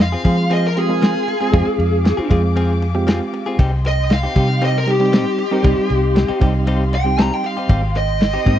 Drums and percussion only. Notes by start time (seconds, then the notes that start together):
0.00 snare
0.25 kick, ride
0.51 ride
0.77 ride
1.02 snare, ride
1.28 ride
1.54 kick, ride
1.80 ride
2.05 snare, ride
2.31 kick, ride
2.57 ride
2.82 ride
3.08 snare, ride
3.33 ride
3.59 kick, ride
3.85 ride
4.10 snare, ride
4.36 kick, ride
4.61 ride
4.87 ride
5.13 snare, ride
5.39 ride
5.64 kick, ride
5.90 ride
6.16 snare, ride
6.41 kick, ride
6.67 ride
6.93 ride
7.18 snare, ride
7.44 ride
7.69 kick, ride
7.95 ride
8.21 snare, ride
8.46 kick, ride